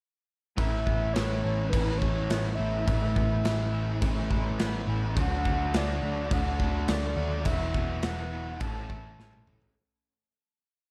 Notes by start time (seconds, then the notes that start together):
0.57 A1 A2 E3 A3 C#4 E4 E5, kick, crash
0.86 A1 B3, kick
1.13 A1 E3 A3 C#4 E4 C#5, snare, crash
1.42 A1 E3 A3 C#4 E4 C#5
1.70 A1 E3 A3 C#4 E4 B4, kick, crash
1.98 A1 E3 A3 C#4 E4 C#5, kick
2.26 C#5
2.30 A1 B3, snare, crash
2.55 A1 E3 A3 C#4 E4 E5
2.86 A1 A2 E3 A3 C#4 E4, kick, crash
3.15 A1 B3, kick
3.43 A1 E3 A3 C#4 E4, snare, crash
3.71 E3 A3 C#4 E4
4.01 A1 E3 A3 C#4 E4, kick, crash
4.30 A1 E3 A3 C#4 E4, kick
4.58 A1 B3, snare, crash
4.86 A1 E3 A3 C#4 E4
5.15 D2 D3 F#3 A3 D4 F#4, kick, crash
5.20 F#5
5.44 D2 A3, kick
5.73 D2 D3 F#3 A3 D4 F#4, snare, crash
5.77 D5
6.01 D2 F#3 A3 D4 F#4 D5
6.30 D2 D3 F#3 A3 D4 F#4 F#5, kick, crash
6.58 D2 F#3 A3 D4 F#4, kick
6.87 D2 A3 D5, snare, crash
7.15 D#2 F#3 A3 D4 F#4
7.44 E1 E2 B2 E3 F#3 B3 E4 F#4 E5, kick, crash
7.74 E1 B3, kick
8.02 E1 E3 B3 E4 F#4 F#5, snare, crash
8.31 E3 B3 E4 F#4
8.59 A1 A2 E3 A3 C#4 E4 A4 A5, kick, crash
8.88 A1 A3 C#4 A4, kick
9.18 A1 C#4, snare
9.33 high tom
9.46 A1 E3 A3 C#4 A4, mid tom
9.62 floor tom